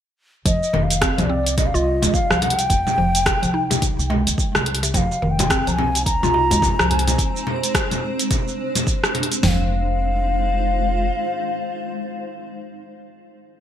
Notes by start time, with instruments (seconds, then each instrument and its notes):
0.45 upright bass F1, synth pluck F3, bansuri D#5, kick, closed hi-hat, shaker
0.63 shaker
0.73 upright bass F1, synth pluck D#3, low conga
0.83 bansuri F5
0.90 closed hi-hat, shaker
1.01 synth pluck C4, kick, cross-stick, closed hi-hat, shaker
1.18 upright bass C2, synth pluck F3, bansuri D#5, closed hi-hat, low conga, shaker
1.25 bansuri D5
1.29 synth pluck C4
1.46 closed hi-hat, shaker
1.58 bansuri D#5, kick, closed hi-hat, low conga, shaker
1.67 bansuri F5
1.74 upright bass C2, synth pluck F4, bansuri D#5, shaker
2.02 upright bass F2, synth pluck G#3, closed hi-hat, low conga, shaker
2.14 bansuri F5, kick, shaker
2.30 upright bass C2, synth pluck F3, cross-stick, shaker
2.42 bansuri F#5, closed hi-hat, low conga
2.50 closed hi-hat
2.59 bansuri G5, closed hi-hat, shaker
2.70 upright bass F1, kick, closed hi-hat, shaker
2.87 low conga, shaker
2.98 upright bass F1, synth pluck F3
3.15 closed hi-hat, shaker
3.26 kick, cross-stick, closed hi-hat, low conga, shaker
3.43 upright bass C2, synth pluck F3, closed hi-hat, shaker
3.54 synth pluck D#4
3.71 synth pluck C3, closed hi-hat, low conga, shaker
3.82 kick, closed hi-hat, shaker
3.99 upright bass C2, shaker
4.10 synth pluck G#3, low conga
4.27 upright bass F2, closed hi-hat, shaker
4.38 kick, shaker
4.55 upright bass C2, cross-stick, low conga, shaker
4.66 closed hi-hat
4.75 closed hi-hat
4.83 synth pluck C3, closed hi-hat, shaker
4.94 upright bass F1, synth pluck F3, ambient pad G#3 C4 D#4 C5, bansuri F5 G5, kick, closed hi-hat, low conga, shaker
5.11 darbuka ka, shaker
5.22 upright bass F1, synth pluck D#3, darbuka ka
5.31 bansuri G5
5.39 closed hi-hat, darbuka tek, low conga, darbuka dum, shaker
5.50 synth pluck C4, kick, cross-stick, closed hi-hat, shaker
5.67 upright bass C2, synth pluck F3, bansuri A#5, closed hi-hat, darbuka tek, shaker
5.72 bansuri G#5
5.78 synth pluck C4, low conga
5.95 closed hi-hat, darbuka ka, shaker
6.05 bansuri A#5, kick, closed hi-hat, shaker
6.23 upright bass C2, synth pluck F4, low conga, shaker
6.34 darbuka tek
6.51 upright bass F2, synth pluck G#3, closed hi-hat, darbuka ka, darbuka dum, shaker
6.62 kick, low conga, shaker
6.79 upright bass C2, synth pluck F3, cross-stick, shaker
6.90 bansuri G#5, closed hi-hat, darbuka dum
6.99 closed hi-hat
7.07 closed hi-hat, darbuka tek, low conga, shaker
7.18 ambient pad D4, kick, closed hi-hat, shaker
7.36 shaker
7.47 low conga
7.63 closed hi-hat, shaker
7.75 kick, cross-stick, closed hi-hat, shaker
7.91 closed hi-hat, low conga, shaker
8.19 closed hi-hat, shaker
8.31 kick, closed hi-hat, low conga, shaker
8.48 shaker
8.75 closed hi-hat, low conga, shaker
8.87 kick, shaker
9.04 cross-stick, shaker
9.15 closed hi-hat, low conga
9.23 closed hi-hat
9.32 closed hi-hat, shaker
9.43 upright bass F1, synth pluck F3, ambient pad G#3 D#4 F4 C5, bansuri G5, snare, floor tom, open hi-hat
9.48 bansuri F5